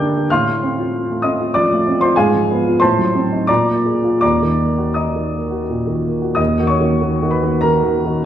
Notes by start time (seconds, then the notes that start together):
Already playing: G2 D3 A#3 G4 A#4 D5 G5 A#5 D6 G6
0.00 D4
0.17 G4
0.30 A2 F5 C6 F6
0.48 A3
0.63 C4
0.79 F4
1.10 A3
1.22 C4 D#5 D#6
1.40 F4
1.54 F3 D5 D6
1.72 A3
1.87 C4
2.01 F4 C5 C6
2.16 G#2 G#4 F5 G#5
2.35 F3
2.51 B3
2.68 F4
2.80 A2 C5 A5 C6
2.99 F#3
3.15 C4
3.32 D#4
3.47 A#2 D5 A#5 D6
3.69 A#3
3.86 G#4
4.04 F4
4.21 D#2 D5 A#5 D6
4.42 D#3
4.60 A#3
4.78 F#4
4.94 D#5 A#5 D#6
5.16 D#3
5.35 A#3
5.50 F#4
5.70 A#2
5.87 D#3
6.05 A#3
6.22 F#4
6.35 D#2 D#5 D#6
6.59 D#3 A#3 F#4
6.67 C#5 C#6
6.80 D#3 A#3 F#4
7.01 D#3 A#3 F#4
7.22 D#3 A#3 F#4
7.31 B4 B5
7.43 D#3 A#3 F#4
7.61 D#3 A#3 F#4 A#4 A#5
7.83 D#3 A#3 F#4
8.05 D#3 A#3 F#4